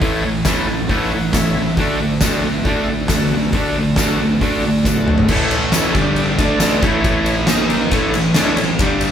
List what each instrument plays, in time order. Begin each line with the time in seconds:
0.00 distorted electric guitar A2 E3 A3, transistor combo organ E4 A4 C#5, kick, open hi-hat
0.24 distorted electric guitar A2 E3
0.45 distorted electric guitar A2 E3 A3, transistor combo organ E4 A4 B4, kick, snare, open hi-hat, tambourine
0.67 distorted electric guitar A2 E3, transistor combo organ A5
0.89 distorted electric guitar A2 E3 A3, transistor combo organ E4 A4 C#5 F#5, kick, open hi-hat
1.12 distorted electric guitar A2 E3
1.32 distorted electric guitar A2 E3, transistor combo organ E4 A4 C#5 E5, kick, snare, open hi-hat, tambourine
1.56 distorted electric guitar A2 E3
1.76 distorted electric guitar D3 A3 D4, transistor combo organ F#4 A4 D5, kick, open hi-hat
2.00 distorted electric guitar D3 A3
2.21 distorted electric guitar D3 A3 D4, transistor combo organ F#4 A4 D5, kick, snare, open hi-hat, tambourine
2.45 distorted electric guitar D3 A3
2.63 distorted electric guitar D3 A3 D4, transistor combo organ F#4 A4 D5, kick, open hi-hat
2.89 distorted electric guitar D3 A3
3.06 transistor combo organ F#4 A4 D5, kick, snare, open hi-hat, tambourine
3.11 distorted electric guitar D3 A3
3.33 distorted electric guitar D3 A3
3.52 distorted electric guitar D3 A3 D4, transistor combo organ F#4 A4 D5, kick, open hi-hat
3.78 distorted electric guitar D3 A3
3.96 distorted electric guitar D3 A3 D4, transistor combo organ F#4 A4 D5, kick, snare, open hi-hat, tambourine
4.21 distorted electric guitar D3 A3
4.41 distorted electric guitar D3 A3 D4, transistor combo organ F#4 A4 D5, kick, open hi-hat
4.65 distorted electric guitar D3 A3
4.84 distorted electric guitar D3 A3, transistor combo organ F#4 A4 D5, kick, snare, tambourine
4.96 high tom
5.08 distorted electric guitar D3 A3, mid tom
5.18 floor tom
5.28 distorted electric guitar A2 E3 A3, transistor combo organ E4 A4 C#5, kick, crash
5.51 ride
5.72 transistor combo organ E4 A4 C#5, snare, ride, tambourine
5.95 distorted electric guitar G2 D3 G3, transistor combo organ D4 G4 D5, kick, ride
6.16 ride
6.39 distorted electric guitar D3 A3 D4, transistor combo organ D4 A4 D5, kick, ride
6.60 snare, ride, tambourine
6.82 distorted electric guitar A2 E3 A3, transistor combo organ E4 A4 C#5, kick, ride
7.04 kick, ride
7.26 ride
7.47 distorted electric guitar D#3 A#3 D#4, transistor combo organ D#4 A#4 D#5, snare, ride, tambourine
7.70 ride
7.91 distorted electric guitar A2 E3 A3, transistor combo organ E4 A4 C#5, kick, ride
8.14 distorted electric guitar A2 E3, ride
8.34 distorted electric guitar D3 A3 D4, transistor combo organ E4 A4, snare, ride, tambourine
8.39 transistor combo organ C#5
8.57 distorted electric guitar A2 E3, ride
8.79 distorted electric guitar G2 D3 G3, transistor combo organ D4 G4 D5, kick, ride
9.01 ride